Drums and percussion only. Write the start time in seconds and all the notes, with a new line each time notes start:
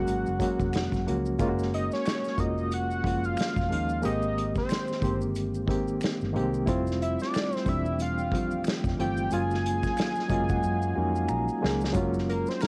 0.07 closed hi-hat, maracas
0.26 maracas
0.40 kick, closed hi-hat, maracas
0.60 kick, maracas
0.73 finger snap, snare, closed hi-hat, maracas
0.92 kick, snare, maracas
1.08 closed hi-hat
1.26 maracas
1.39 kick, closed hi-hat, maracas
1.59 snare, maracas
1.74 closed hi-hat
1.92 snare, maracas
2.06 finger snap, snare, closed hi-hat, maracas
2.25 snare, maracas
2.38 kick, closed hi-hat, maracas
2.58 maracas
2.72 closed hi-hat, maracas
2.91 maracas
3.04 kick, closed hi-hat
3.24 maracas
3.37 finger snap, snare, closed hi-hat, maracas
3.56 kick, snare, maracas
3.72 closed hi-hat
3.89 maracas
4.03 closed hi-hat, maracas
4.22 maracas
4.38 closed hi-hat
4.55 kick, snare, maracas
4.69 finger snap, snare, closed hi-hat, maracas
4.88 snare, maracas
5.02 kick, closed hi-hat, maracas
5.21 maracas
5.35 closed hi-hat, maracas
5.54 maracas
5.68 kick, closed hi-hat
5.88 maracas
6.01 finger snap, snare, closed hi-hat, maracas
6.21 snare, maracas
6.36 closed hi-hat
6.54 maracas
6.67 kick, closed hi-hat, maracas
6.87 snare, maracas
7.02 closed hi-hat
7.19 snare, maracas
7.34 finger snap, snare, closed hi-hat, maracas
7.52 snare, maracas
7.66 kick, closed hi-hat, maracas
7.85 maracas
7.99 closed hi-hat, maracas
8.18 maracas
8.32 kick, closed hi-hat
8.51 maracas
8.64 finger snap, snare, closed hi-hat, maracas
8.84 kick, snare, maracas
8.99 closed hi-hat
9.17 maracas
9.31 closed hi-hat, maracas
9.51 snare, maracas
9.66 closed hi-hat
9.83 kick, snare, maracas
9.97 finger snap, snare, closed hi-hat, maracas
10.16 snare, maracas
10.29 kick, closed hi-hat, maracas
10.49 kick, maracas
10.63 maracas
10.82 maracas
11.16 maracas
11.28 finger snap, maracas
11.48 maracas
11.64 snare
11.81 snare, maracas
11.94 kick, closed hi-hat, maracas
12.14 maracas
12.18 snare
12.29 closed hi-hat
12.46 snare, maracas
12.61 finger snap, snare, closed hi-hat, maracas